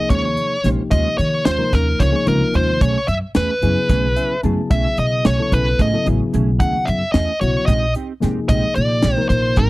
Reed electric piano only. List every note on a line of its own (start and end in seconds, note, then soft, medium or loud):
0.00 0.55 C3 medium
0.00 0.56 F3 medium
0.00 0.55 A#3 medium
0.00 0.56 D#4 medium
0.00 0.56 G#4 medium
0.64 1.49 C3 medium
0.64 1.49 F3 medium
0.64 1.49 A#3 medium
0.64 1.49 D#4 medium
0.64 1.49 G4 medium
1.57 2.06 C3 medium
1.57 2.07 F3 medium
1.57 2.07 A#3 medium
1.57 2.07 D#4 medium
1.57 2.07 A#4 medium
2.11 2.24 C3 medium
2.11 2.25 F3 medium
2.11 2.25 A#3 medium
2.11 2.25 D#4 medium
2.11 2.25 G#4 medium
2.26 2.80 C3 medium
2.26 2.81 F3 medium
2.26 2.81 A#3 medium
2.26 2.81 D#4 medium
2.26 2.81 F4 medium
3.62 4.34 C#3 medium
3.62 4.35 F#3 medium
3.62 4.35 B3 medium
3.62 4.35 E4 medium
3.62 4.35 G#4 medium
4.16 4.42 E5 medium
4.43 5.27 C#3 medium
4.43 5.28 F#3 medium
4.43 5.28 B3 medium
4.43 5.28 E4 medium
4.43 5.28 G#4 medium
4.43 4.69 A5 medium
5.39 5.87 C#3 medium
5.39 5.87 F#3 medium
5.39 5.87 B3 medium
5.39 5.87 E4 medium
5.39 5.87 A4 medium
5.93 6.04 C#3 medium
5.93 6.05 F#3 medium
5.93 6.05 B3 medium
5.93 6.05 E4 medium
5.93 6.05 A4 medium
6.05 7.02 C#3 medium
6.05 7.02 F#3 medium
6.05 7.02 B3 medium
6.05 7.02 E4 medium
6.05 7.03 G#4 medium
7.41 7.68 C#3 medium
7.41 7.68 F#3 medium
7.41 7.68 B3 medium
7.41 7.69 E4 medium
7.41 7.69 F#4 medium
8.20 9.05 C3 medium
8.20 9.06 F3 medium
8.20 9.06 A#3 medium
8.20 9.06 D#4 medium
8.20 9.06 G#4 medium
9.16 9.65 C3 medium
9.16 9.65 F3 medium
9.16 9.65 A#3 medium
9.16 9.65 D#4 medium
9.16 9.65 A#4 medium